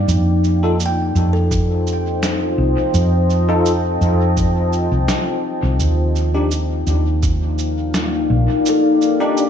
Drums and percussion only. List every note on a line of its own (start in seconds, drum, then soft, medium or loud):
0.08 cabasa soft
0.44 cabasa soft
0.80 cabasa soft
1.16 cabasa soft
1.51 kick loud
1.51 cabasa soft
1.87 cabasa soft
2.23 snare medium
2.23 cabasa soft
2.94 cabasa soft
3.30 cabasa soft
3.66 cabasa soft
4.01 cabasa soft
4.37 kick medium
4.37 cabasa soft
4.73 cabasa soft
5.08 snare medium
5.08 cabasa soft
5.80 cabasa soft
6.16 cabasa soft
6.51 cabasa soft
6.87 cabasa soft
7.23 kick medium
7.23 cabasa soft
7.58 cabasa soft
7.94 snare medium
7.94 cabasa soft
8.66 cabasa medium
9.02 cabasa soft
9.37 cabasa medium